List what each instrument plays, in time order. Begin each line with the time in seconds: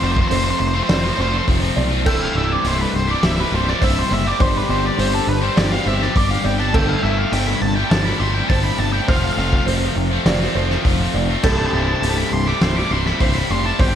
Already playing: distorted electric guitar F2 C3, felt piano C5
0.01 picked electric bass F1, distorted electric guitar F3 A3 C4 F4, lead electric guitar C5
0.12 lead electric guitar C5
0.17 lead electric guitar C5, kick
0.28 picked electric bass F1, distorted electric guitar F2 C3 F3, lead electric guitar C5, felt piano C5, open hi-hat
0.32 distorted electric guitar A3 C4 F4
0.36 lead electric guitar C5
0.44 distorted electric guitar A3 C4 F4, lead electric guitar C5
0.48 distorted electric guitar F3, lead electric guitar C5
0.59 picked electric bass F1, lead electric guitar C5, muted distorted electric guitar stroke
0.67 lead electric guitar C5
0.74 distorted electric guitar F3 A3 C4 F4, lead electric guitar C5
0.83 lead electric guitar C5
0.89 picked electric bass F1, lead electric guitar C5, felt piano D5, snare, open hi-hat
0.97 lead electric guitar C5
1.04 distorted electric guitar F3 A3 C4 F4, lead electric guitar C5
1.14 lead electric guitar C5, felt piano C5
1.18 picked electric bass F1, distorted electric guitar F3 A3 C4 F4, lead electric guitar C5
1.29 distorted electric guitar F4, lead electric guitar C5
1.34 distorted electric guitar F3 A3 C4, lead electric guitar C5
1.47 picked electric bass F1, distorted electric guitar F2 C3 F3 A3 C4 F4, kick, open hi-hat
1.61 distorted electric guitar F3 A3 C4 F4
1.76 picked electric bass B1, felt piano D5
1.90 distorted electric guitar F3 A3 C4 F4
2.05 picked electric bass C1, distorted electric guitar C2 G2 C3 G3 A3 E4, pedal steel guitar E4 A4 C5 G5, felt piano A4, lead electric guitar E5, kick, crash
2.22 lead electric guitar F5
2.35 picked electric bass C1, distorted electric guitar C3 G3 A3 E4, lead electric guitar E5
2.52 lead electric guitar D5
2.64 picked electric bass C1, distorted electric guitar C2 G2 C3 G3 A3 E4, lead electric guitar C5, open hi-hat
2.78 distorted electric guitar C3 G3 A3 E4, lead electric guitar B4
2.94 picked electric bass C1, lead electric guitar C5, muted distorted electric guitar stroke
3.07 distorted electric guitar C3 G3 A3 E4, lead electric guitar D5
3.23 picked electric bass C1, lead electric guitar E5, snare, open hi-hat
3.36 distorted electric guitar C3 G3 A3 E4, lead electric guitar B4
3.51 picked electric bass C1, distorted electric guitar C3 G3 A3 E4
3.55 lead electric guitar C5
3.65 distorted electric guitar C3 G3 A3 E4, lead electric guitar D5, snare
3.80 picked electric bass C1, distorted electric guitar C2 G2 C3 G3 A3 E4, felt piano C5, lead electric guitar E5, kick, open hi-hat
3.95 distorted electric guitar C3 G3 A3 E4
3.99 lead electric guitar C5
4.11 picked electric bass F#1, lead electric guitar E5
4.24 distorted electric guitar C3 G3 A3 E4, lead electric guitar D5
4.39 picked electric bass G1, distorted electric guitar G2 D3 G3 C4 D4 G4, pedal steel guitar G4 D5 C6, felt piano C5, lead electric guitar C5, kick, open hi-hat
4.57 lead electric guitar B4
4.68 picked electric bass G1, distorted electric guitar G3 C4 D4 G4, lead electric guitar C5
4.86 lead electric guitar D5
4.98 picked electric bass G1, distorted electric guitar G2 D3 G3 C4 D4 G4, felt piano C5, lead electric guitar C5, open hi-hat
5.12 distorted electric guitar G3 C4 D4 G4, lead electric guitar A4
5.27 picked electric bass G1, lead electric guitar B4, muted distorted electric guitar stroke
5.41 distorted electric guitar G3 C4 D4 G4, lead electric guitar C5
5.56 picked electric bass G1, felt piano D5, lead electric guitar D5, snare, open hi-hat
5.71 distorted electric guitar G3 C4 D4 G4, lead electric guitar F5
5.85 picked electric bass G1, distorted electric guitar G3 C4 D4 G4, felt piano C5, lead electric guitar E5
6.00 distorted electric guitar G3 C4 D4 G4, lead electric guitar D5, snare
6.14 picked electric bass G1, distorted electric guitar G2 D3 G3 C4 D4 G4, lead electric guitar D5, kick, open hi-hat
6.29 distorted electric guitar G3 C4 D4 G4, lead electric guitar F5
6.44 picked electric bass G1, felt piano D5, lead electric guitar G5
6.58 distorted electric guitar G3 C4 D4 G4, lead electric guitar A5
6.73 picked electric bass G1, distorted electric guitar C2 G2 C3 G3 A3 E4, felt piano A4, pedal steel guitar E5 A5, lead electric guitar G5, kick, crash
6.89 lead electric guitar F5
7.02 picked electric bass G1, distorted electric guitar C3 G3 A3 E4, lead electric guitar E5
7.18 lead electric guitar F5
7.31 picked electric bass G1, distorted electric guitar C2 G2 C3 G3 A3 E4, lead electric guitar G5, open hi-hat
7.46 distorted electric guitar C3 G3 A3 E4, lead electric guitar B5
7.61 picked electric bass G1, lead electric guitar A5, muted distorted electric guitar stroke
7.75 distorted electric guitar C3 G3 A3 E4, lead electric guitar G5
7.90 picked electric bass G1, lead electric guitar A5, snare, open hi-hat
8.04 distorted electric guitar C3 G3 A3 E4, lead electric guitar B5
8.19 picked electric bass G1, distorted electric guitar C3 G3 A3 E4, lead electric guitar C6
8.34 distorted electric guitar C3 G3 A3 E4, lead electric guitar G5
8.48 picked electric bass G1, distorted electric guitar C2 G2 C3 G3 A3 E4, felt piano C5, lead electric guitar A5, kick, open hi-hat
8.63 distorted electric guitar C3 G3 A3 E4, lead electric guitar B5
8.78 picked electric bass G1, lead electric guitar A5
8.93 distorted electric guitar C3 G3 A3 E4, lead electric guitar G5
9.07 picked electric bass F1, distorted electric guitar F2 C3 F3 A3 C4 F4, pedal steel guitar A4 C5 F5 C6, felt piano C5, lead electric guitar F5, kick, open hi-hat
9.16 lead electric guitar F5
9.24 lead electric guitar F5
9.33 distorted electric guitar F3, lead electric guitar F5
9.37 picked electric bass F1, distorted electric guitar A3 C4 F4, lead electric guitar F5
9.48 lead electric guitar F5
9.53 lead electric guitar F5, kick
9.66 picked electric bass F1, distorted electric guitar F2 C3 F3 A3 C4 F4, felt piano C5, open hi-hat
9.81 distorted electric guitar F3 A3 C4 F4
9.96 picked electric bass F1, muted distorted electric guitar stroke
10.10 distorted electric guitar F3 A3 C4 F4
10.25 picked electric bass F1, felt piano D5, snare, open hi-hat
10.40 distorted electric guitar F3 A3 C4 F4
10.54 picked electric bass F1, distorted electric guitar F3 A3 C4 F4, felt piano C5
10.69 distorted electric guitar F3 A3 C4 F4, snare
10.84 picked electric bass F1, distorted electric guitar F2 C3 F3 A3 C4 F4, kick, open hi-hat
10.99 distorted electric guitar F3 A3 C4 F4
11.14 picked electric bass F1, felt piano D5
11.28 distorted electric guitar F3 A3 C4 F4
11.43 picked electric bass C1, distorted electric guitar C2 G2 C3 G3 A3 E4, pedal steel guitar G4 C5 E5 A5, felt piano A4, lead electric guitar A5, kick, crash
11.51 lead electric guitar A5
11.58 lead electric guitar A5
11.66 lead electric guitar A5
11.73 picked electric bass C1, distorted electric guitar C3 G3 A3 E4, lead electric guitar A5
11.80 lead electric guitar A5
11.87 lead electric guitar A5
11.95 lead electric guitar A5
12.02 picked electric bass C1, distorted electric guitar C2 G2 C3 G3 A3 E4, lead electric guitar A5, open hi-hat
12.16 distorted electric guitar C3 G3 A3 E4, lead electric guitar B5
12.32 picked electric bass C1, lead electric guitar C6, muted distorted electric guitar stroke
12.46 distorted electric guitar C3 G3 A3 E4, lead electric guitar D6
12.61 picked electric bass C1, lead electric guitar C6, snare, open hi-hat
12.76 distorted electric guitar C3 G3 A3 E4, lead electric guitar D6
12.90 picked electric bass C1, distorted electric guitar C3 G3 A3 E4, lead electric guitar C6
13.05 distorted electric guitar C3 G3 A3 E4, lead electric guitar B5, snare
13.20 picked electric bass C1, distorted electric guitar C2 G2 C3 G3 A3 E4, felt piano C5, lead electric guitar C6, kick, open hi-hat
13.34 distorted electric guitar C3 G3 A3 E4, lead electric guitar B5
13.50 picked electric bass F1, lead electric guitar C6
13.64 distorted electric guitar C3 G3 A3 E4, lead electric guitar A5
13.79 picked electric bass G1, distorted electric guitar G2 D3 G3 C4 D4 G4, felt piano C5, pedal steel guitar D5 C6, lead electric guitar G5, kick, open hi-hat
13.88 lead electric guitar G5